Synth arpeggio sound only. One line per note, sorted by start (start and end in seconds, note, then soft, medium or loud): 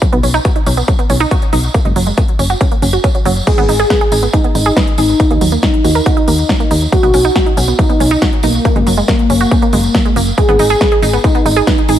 0.02 0.06 F#3 medium
0.13 0.19 B3 loud
0.23 0.33 C#4 medium
0.34 0.41 D#4 loud
0.45 0.51 F#4 medium
0.56 0.62 D#4 medium
0.67 0.76 C#4 medium
0.77 0.84 B3 medium
0.88 0.92 F#3 medium
0.99 1.05 B3 medium
1.10 1.16 C#4 medium
1.20 1.27 D#4 loud
1.31 1.38 F#4 medium
1.53 1.57 D#4 medium
1.74 1.78 A#3 medium
1.85 1.92 G#3 medium
1.96 2.03 F#3 medium
2.07 2.13 G#3 medium
2.18 2.24 A#3 medium
2.39 2.43 C#4 medium
2.50 2.56 F#4 medium
2.61 2.67 C#4 medium
2.72 2.81 A#3 medium
2.82 2.92 C#4 medium
2.93 2.97 F#4 medium
3.04 3.10 C#4 medium
3.15 3.21 F#3 medium
3.25 3.35 F#3 loud
3.47 3.51 G#3 medium
3.58 3.64 B3 loud
3.69 3.79 D#4 medium
3.79 3.86 G#4 loud
3.90 3.97 B4 medium
4.01 4.08 G#4 medium
4.12 4.22 D#4 medium
4.23 4.29 B3 medium
4.33 4.37 G#3 medium
4.44 4.51 B3 medium
4.55 4.62 D#4 medium
4.66 4.72 G#4 loud
4.77 4.83 B4 medium
4.98 5.02 G#4 medium
5.20 5.24 D#4 medium
5.30 5.37 A#3 medium
5.41 5.48 F#3 medium
5.52 5.59 A#3 medium
5.63 5.69 D#4 medium
5.84 5.88 F#4 medium
5.95 6.02 A#4 medium
6.06 6.13 F#4 medium
6.17 6.27 D#4 medium
6.28 6.34 A#3 medium
6.49 6.56 F#3 medium
6.60 6.70 A#3 medium
6.71 6.75 D#4 medium
6.92 6.96 F#3 medium
7.03 7.10 B3 medium
7.14 7.24 C#4 medium
7.25 7.31 D#4 medium
7.36 7.42 F#4 medium
7.46 7.53 D#4 medium
7.57 7.67 C#4 medium
7.68 7.75 B3 medium
7.79 7.83 F#3 medium
7.89 7.96 B3 medium
8.00 8.07 C#4 medium
8.11 8.18 D#4 loud
8.22 8.28 F#4 medium
8.43 8.47 D#4 medium
8.65 8.69 A#3 medium
8.76 8.82 G#3 medium
8.87 8.93 F#3 medium
8.97 9.04 G#3 medium
9.08 9.15 A#3 medium
9.30 9.34 C#4 medium
9.41 9.47 F#4 medium
9.51 9.58 C#4 medium
9.62 9.72 A#3 medium
9.73 9.80 G#3 medium
9.95 10.01 F#3 medium
10.05 10.15 G#3 medium
10.16 10.20 A#3 medium
10.38 10.42 G#3 medium
10.49 10.55 B3 loud
10.59 10.69 D#4 medium
10.70 10.77 G#4 loud
10.81 10.87 B4 medium
10.92 10.98 G#4 medium
11.02 11.12 D#4 medium
11.13 11.20 B3 medium
11.24 11.28 G#3 medium
11.35 11.41 B3 medium
11.46 11.52 D#4 medium
11.56 11.63 G#4 loud
11.67 11.74 B4 medium
11.89 11.93 G#4 medium